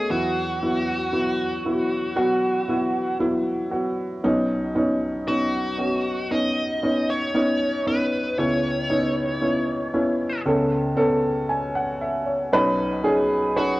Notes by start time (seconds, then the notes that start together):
Already playing: A3 B3 C#4 D#4 F#4 G#4
0.10 E2 F#3 B3 E4 F#4
0.62 F#3 B3 E4
1.13 F#3 B3 E4
1.65 F#3 B3 E4
2.16 F#3 B3 F#4
2.68 F#3 B3 E4
3.19 F#3 B3 E4
3.71 F#3 B3 F#4
4.24 B1 B2 B3 C#4 D#4
4.75 B3 C#4 D#4
5.27 B3 C#4 D#4 F#4
5.79 B3 C#4 F#4
6.31 B3 C#4 D#4 D#5
6.83 B3 C#4 D#4
7.10 C#5
7.34 B3 C#4 D#4
7.87 B3 C#4 D#4 B4
8.38 C#2 C#3 B3 C#4 E4 C#5
8.90 B3 C#4 D#4
9.41 B3 C#4 E4
9.94 B3 C#4 E4
10.45 C#2 C#3 B3 C#4 A4
10.97 B3 C#4 A4
11.49 G#5
11.75 F#5
12.01 E5
12.26 C#5
12.53 B1 B2 C#4 D#4 B4
13.03 C#4 D#4 G#4
13.56 C#4 D#4 F#4 B4